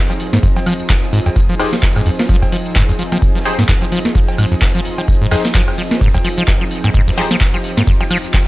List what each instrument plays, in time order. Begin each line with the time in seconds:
Already playing: analog synth pad F3 C4 D#4 G#4
0.10 acid bass F3, closed hi-hat, tambourine, cowbell
0.20 open hi-hat, shaker
0.33 acid bass G#2, snare, closed hi-hat, tambourine
0.43 acid bass F2, kick, closed hi-hat, tambourine, shaker
0.56 acid bass F3, closed hi-hat, tambourine, cowbell
0.66 acid bass F3, open hi-hat, high woodblock, shaker
0.80 closed hi-hat, tambourine
0.90 acid bass F3, kick, snare, clap, closed hi-hat, tambourine, cowbell, shaker
1.03 closed hi-hat, tambourine
1.13 acid bass G#2, open hi-hat, shaker
1.26 acid bass F2, closed hi-hat, tambourine, cowbell
1.36 acid bass F3, kick, closed hi-hat, tambourine, shaker
1.49 acid bass F3, closed hi-hat, tambourine
1.59 synth stab D#4 G4 G#4 C5, snare, open hi-hat, cowbell, high woodblock
1.73 acid bass F3, snare, closed hi-hat, tambourine
1.83 kick, snare, clap, closed hi-hat, tambourine, shaker
1.96 acid bass G#2, closed hi-hat, tambourine, cowbell, high woodblock
2.06 acid bass F2, open hi-hat, shaker
2.19 acid bass F3, snare, closed hi-hat, tambourine
2.29 acid bass F3, kick, closed hi-hat, tambourine, shaker
2.42 kick, closed hi-hat, tambourine, cowbell
2.52 acid bass F3, open hi-hat, shaker
2.66 closed hi-hat, tambourine
2.75 acid bass G#2, kick, snare, clap, closed hi-hat, tambourine, cowbell, shaker
2.89 acid bass F2, closed hi-hat, tambourine
2.99 acid bass F3, open hi-hat, shaker
3.12 acid bass F3, snare, closed hi-hat, tambourine, cowbell
3.22 kick, closed hi-hat, tambourine, shaker
3.35 acid bass F3, snare, closed hi-hat, tambourine
3.45 synth stab D#4 G4 G#4 C5, open hi-hat, cowbell, shaker
3.59 acid bass G#2, snare, closed hi-hat, tambourine
3.68 acid bass F2, kick, snare, clap, closed hi-hat, tambourine, shaker
3.82 acid bass F3, closed hi-hat, tambourine, cowbell
3.92 acid bass F3, open hi-hat, shaker
4.05 snare, closed hi-hat, tambourine
4.15 acid bass F3, kick, closed hi-hat, tambourine, shaker
4.28 closed hi-hat, tambourine, cowbell
4.38 acid bass G#2, open hi-hat, high woodblock, shaker
4.52 acid bass F2, closed hi-hat, tambourine
4.61 acid bass F3, kick, snare, clap, closed hi-hat, tambourine, cowbell, shaker
4.75 acid bass F3, closed hi-hat, tambourine
4.85 open hi-hat, shaker
4.98 acid bass F3, closed hi-hat, tambourine, cowbell
5.08 kick, closed hi-hat, tambourine, shaker
5.21 acid bass G#2, closed hi-hat, tambourine
5.31 acid bass F2, synth stab D#4 G4 G#4 C5, snare, open hi-hat, cowbell, high woodblock
5.45 acid bass F3, snare, closed hi-hat, tambourine
5.55 acid bass F3, kick, snare, clap, closed hi-hat, tambourine, shaker
5.68 closed hi-hat, tambourine, cowbell, high woodblock
5.78 acid bass F3, open hi-hat, shaker
5.91 snare, closed hi-hat, tambourine
6.01 acid bass G#2, kick, closed hi-hat, tambourine, shaker
6.14 acid bass F2, kick, closed hi-hat, tambourine, cowbell
6.24 acid bass F3, open hi-hat, shaker
6.38 acid bass F3, closed hi-hat, tambourine
6.48 kick, snare, clap, closed hi-hat, tambourine, cowbell, shaker
6.61 acid bass F3, closed hi-hat, tambourine
6.71 open hi-hat, shaker
6.84 acid bass G#2, snare, closed hi-hat, tambourine, cowbell
6.94 acid bass G#2, analog synth pad G4, kick, closed hi-hat, tambourine, shaker
7.08 acid bass F2, snare, closed hi-hat, tambourine
7.18 acid bass F3, synth stab D#4 G4 G#4 C5, open hi-hat, cowbell, shaker
7.31 acid bass F3, snare, closed hi-hat, tambourine
7.40 kick, snare, clap, closed hi-hat, tambourine, shaker
7.54 acid bass F3, closed hi-hat, tambourine, cowbell
7.64 open hi-hat, shaker
7.77 acid bass G#2, snare, closed hi-hat, tambourine
7.87 acid bass F2, kick, closed hi-hat, tambourine, shaker
8.01 acid bass F3, closed hi-hat, tambourine, cowbell
8.10 acid bass F3, open hi-hat, high woodblock, shaker
8.24 closed hi-hat, tambourine
8.34 acid bass F3, kick, snare, clap, closed hi-hat, tambourine, cowbell, shaker